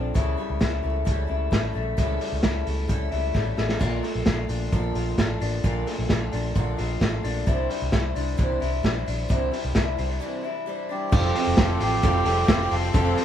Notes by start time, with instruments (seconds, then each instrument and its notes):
Already playing: fingered electric bass A#1, clean electric guitar D3 F3 C4 D4 A4, twelve-string acoustic guitar C4 F4 A4
0.14 fingered electric bass C#2, twelve-string acoustic guitar C#3 E3 G3 C#4 E4 A4, kick, closed hi-hat
0.37 twelve-string acoustic guitar G3 C#4 E4 A4
0.50 fingered electric bass C#2
0.59 fingered electric bass C#2, twelve-string acoustic guitar G3 C#4 E4 A4, kick, snare, closed hi-hat
0.82 fingered electric bass C#2, twelve-string acoustic guitar G3 C#4 E4 A4, clean electric guitar A3
1.05 fingered electric bass C#2, twelve-string acoustic guitar C#3 E3 G3 C#4 E4 A4, kick, closed hi-hat
1.27 fingered electric bass C#2, twelve-string acoustic guitar G3 C#4 E4 A4
1.51 fingered electric bass A1, twelve-string acoustic guitar G3 C#4 E4 A4, kick, snare, closed hi-hat
1.73 fingered electric bass A#1, twelve-string acoustic guitar G3 C#4 E4 A4, clean electric guitar A3
1.97 fingered electric bass C#2, twelve-string acoustic guitar C#3 E3 G3 C#4 E4 A4, kick, closed hi-hat
2.20 twelve-string acoustic guitar G3 C#4 E4 A4, open hi-hat
2.32 fingered electric bass C#2
2.43 fingered electric bass C#2, twelve-string acoustic guitar G3 C#4 E4 A4, kick, snare, closed hi-hat
2.66 fingered electric bass C#2, twelve-string acoustic guitar G3 C#4 E4 A4, clean electric guitar A3, open hi-hat
2.88 fingered electric bass C#2, twelve-string acoustic guitar C#3 E3 G3 C#4 E4 A4, kick, closed hi-hat
3.12 fingered electric bass C#2, twelve-string acoustic guitar G3 C#4 E4 A4, open hi-hat
3.34 fingered electric bass A1, twelve-string acoustic guitar G3 C#4 E4 A4, kick, snare
3.57 fingered electric bass A1, twelve-string acoustic guitar G3 C#4 E4 A4, clean electric guitar A3, snare
3.69 snare
3.79 fingered electric bass A#1, twelve-string acoustic guitar A#2 D3 A#3 D4 F4 A4, kick, splash
4.03 clean electric guitar A3, twelve-string acoustic guitar A#3 D4 F4 A4, open hi-hat
4.15 fingered electric bass A#1
4.26 fingered electric bass A#1, twelve-string acoustic guitar A#3 D4 F4 A4, kick, snare, closed hi-hat
4.48 fingered electric bass A#1, twelve-string acoustic guitar A#3 D4 F4 A4, open hi-hat
4.72 fingered electric bass A#1, twelve-string acoustic guitar A#2 D3 A#3 D4 F4 A4, clean electric guitar F3, kick, closed hi-hat
4.95 fingered electric bass A#1, twelve-string acoustic guitar A#3 D4 F4 A4, open hi-hat
5.18 fingered electric bass A1, clean electric guitar A3, twelve-string acoustic guitar A#3 D4 F4 A4, kick, snare, closed hi-hat
5.40 fingered electric bass A1, twelve-string acoustic guitar A#3 D4 F4 A4, open hi-hat
5.63 fingered electric bass A#1, twelve-string acoustic guitar A#2 D3 A#3 D4 F4 A4, kick, closed hi-hat
5.86 clean electric guitar A3, twelve-string acoustic guitar A#3 D4 F4 A4, open hi-hat
5.99 fingered electric bass A#1
6.09 fingered electric bass A#1, twelve-string acoustic guitar A#3 D4 F4 A4, kick, snare, closed hi-hat
6.32 fingered electric bass A#1, twelve-string acoustic guitar A#3 D4 F4 A4, open hi-hat
6.55 fingered electric bass A#1, twelve-string acoustic guitar A#2 D3 A#3 D4 F4 A4, clean electric guitar F3, kick, closed hi-hat
6.77 fingered electric bass A#1, twelve-string acoustic guitar A#3 D4 F4 A4, open hi-hat
7.00 fingered electric bass A1, clean electric guitar A3, twelve-string acoustic guitar A#3 D4 F4 A4, kick, snare, closed hi-hat
7.23 fingered electric bass A#1, twelve-string acoustic guitar A#3 D4 F4 A4, open hi-hat
7.46 fingered electric bass C2, twelve-string acoustic guitar C3 E3 G3 D4 E4 C5, kick, closed hi-hat
7.70 twelve-string acoustic guitar G3 D4 E4 C5, open hi-hat
7.82 fingered electric bass C2
7.92 fingered electric bass C2, twelve-string acoustic guitar G3 D4 E4 C5, kick, snare, closed hi-hat
8.15 fingered electric bass C2, twelve-string acoustic guitar G3 D4 E4 C5, open hi-hat
8.37 fingered electric bass C2, twelve-string acoustic guitar C3 E3 G3 D4 E4 C5, kick, closed hi-hat
8.60 fingered electric bass C2, twelve-string acoustic guitar G3 D4 E4 C5, open hi-hat
8.83 fingered electric bass A#1, twelve-string acoustic guitar G3 D4 E4 C5, kick, snare, closed hi-hat
9.06 fingered electric bass A#1, twelve-string acoustic guitar G3 D4 E4 C5, open hi-hat
9.28 fingered electric bass C2, twelve-string acoustic guitar C3 E3 G3 D4 E4 C5, kick, closed hi-hat
9.51 twelve-string acoustic guitar G3 D4 E4 C5, open hi-hat
9.65 fingered electric bass C2
9.75 fingered electric bass C2, twelve-string acoustic guitar G3 D4 C5, clean electric guitar E4, kick, snare, closed hi-hat
9.97 fingered electric bass C2, twelve-string acoustic guitar G3 D4 E4 C5, clean electric guitar C4, open hi-hat
10.10 clean electric guitar D4
10.20 twelve-string acoustic guitar C3 E3 G3 D4 E4 C5
10.43 twelve-string acoustic guitar G3 D4 E4 C5
10.66 twelve-string acoustic guitar G3 D4 E4 C5
10.89 twelve-string acoustic guitar G3 D4 E4 C5, melodica G4
11.11 fingered electric bass F1, twelve-string acoustic guitar F3 G3 C4 F4 A4, upright piano C4 F4 G4 A4, trumpet C4, string section A4 F5 G5 C6, kick, crash
11.34 upright piano C4 F4 G4 A4, twelve-string acoustic guitar C4 F4 A4, open hi-hat
11.47 fingered electric bass F1
11.56 fingered electric bass F1, twelve-string acoustic guitar G3 C4 F4 A4, upright piano C4 F4 G4 C5, kick, snare, hi-hat pedal, ride
11.80 fingered electric bass A1, upright piano C4 F4 G4 C5, twelve-string acoustic guitar C4 F4 A4, melodica G4, open hi-hat
12.02 fingered electric bass F1, twelve-string acoustic guitar F3 G3 C4 F4 A4, upright piano C4 F4 G4 A4, kick, hi-hat pedal, ride
12.25 fingered electric bass F1, upright piano C4 F4 G4 A4, twelve-string acoustic guitar C4 F4 A4, open hi-hat
12.48 fingered electric bass F1, twelve-string acoustic guitar G3 C4 F4 A4, upright piano C4 F4 G4 C5, kick, snare, hi-hat pedal, ride
12.70 fingered electric bass F1, upright piano C4 F4 G4 C5, twelve-string acoustic guitar C4 F4 A4, melodica A4, open hi-hat
12.93 fingered electric bass F1, twelve-string acoustic guitar F3 G3 C4 F4 A4, upright piano C4 F4 G4 A4, string section D6, kick, hi-hat pedal, ride
13.16 upright piano C4 F4 G4 A4, twelve-string acoustic guitar C4 F4 A4, open hi-hat